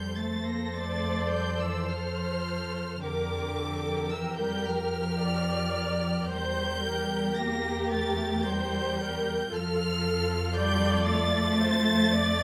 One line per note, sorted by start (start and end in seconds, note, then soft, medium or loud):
0.00 2.99 F2 medium
0.00 0.18 G3 medium
0.00 2.99 A4 medium
0.00 2.99 C5 medium
0.00 0.19 G6 medium
0.18 0.47 A3 medium
0.18 0.48 A6 medium
0.47 0.76 A#3 medium
0.47 0.76 A#6 medium
0.76 1.34 A3 medium
0.76 1.87 D5 medium
0.76 1.33 A6 medium
1.33 1.62 G3 medium
1.33 1.62 G6 medium
1.61 1.90 E3 medium
1.61 1.91 E6 medium
1.90 3.03 F3 medium
1.90 3.03 C5 medium
1.90 3.03 F6 medium
3.02 6.26 F2 medium
3.02 4.10 D3 medium
3.02 6.27 G4 medium
3.02 6.26 A#4 medium
3.02 3.57 A#4 medium
3.02 4.10 D6 loud
3.57 4.13 A4 medium
4.12 4.40 E3 medium
4.12 5.23 A#4 medium
4.12 4.40 E6 medium
4.38 4.67 G3 medium
4.38 4.66 G6 medium
4.67 6.30 F3 medium
4.67 6.30 F6 medium
5.22 6.31 D5 medium
6.30 9.47 E2 medium
6.30 7.35 G3 medium
6.30 9.47 G4 medium
6.30 9.47 A#4 medium
6.30 6.83 C5 medium
6.30 7.38 G6 loud
6.84 7.37 A#4 medium
7.37 7.90 A#3 medium
7.37 8.45 G4 medium
7.37 7.92 A#6 loud
7.91 8.45 A3 medium
7.91 8.44 A6 medium
8.44 9.51 G3 medium
8.44 8.98 C5 medium
8.44 9.51 G6 medium
8.99 9.52 A#4 medium
9.51 12.43 F2 medium
9.51 10.54 F3 medium
9.51 12.43 F4 medium
9.51 12.43 A4 medium
9.51 10.53 A4 medium
9.51 10.56 F6 loud
10.54 11.08 G3 medium
10.54 11.58 D5 medium
10.54 11.07 G6 loud
11.06 12.43 A3 loud
11.06 12.43 A6 loud
11.61 12.12 C5 medium
12.12 12.43 D5 loud